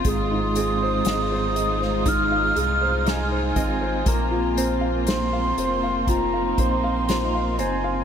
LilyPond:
<<
  \new Staff \with { instrumentName = "Flute" } { \time 4/4 \key f \phrygian \tempo 4 = 60 ees'''2 f'''4 aes''4 | bes''8. r16 c'''4 bes''8 c'''4 aes''8 | }
  \new Staff \with { instrumentName = "Grand piano" } { \time 4/4 \key f \phrygian aes16 ees'16 aes'16 c''16 ees''16 c''16 ees''16 c''16 ees'16 f''16 aes'16 c''16 ees''16 c''16 ees''16 c''16 | bes16 f'16 c''16 f''16 c''16 f''16 c''16 f''16 f'16 f''16 c''16 f''16 c''16 f''16 c''16 f''16 | }
  \new Staff \with { instrumentName = "String section" } { \time 4/4 \key f \phrygian << { f'1~ | f'2 ees'2 | } \\ { <aes ees'>1 | <bes c'>1 | } >> }
  \new Staff \with { instrumentName = "Clean electric guitar" } { \time 4/4 \key f \phrygian aes,8 c'2~ c'8 ees'8 c'8 | bes8 c'2~ c'8 f'8 c'8 | }
  \new Staff \with { instrumentName = "Sub bass" } { \clef bass \time 4/4 \key f \phrygian aes,,4 aes,,4. c,4 aes,,8 | bes,,4. f,,4 bes,,4 ges,,8 | }
  \new DrumStaff \with { instrumentName = "Drums" } \drummode { \time 4/4 <hh bd>8 hh8 <hh sn>8 hh16 sn16 <hh bd>8 hh8 <hh sn>8 <hh bd>8 | <hh bd>8 hh8 <hh sn>8 hh8 <hh bd>8 <hh bd>8 <hh sn>8 hh8 | }
>>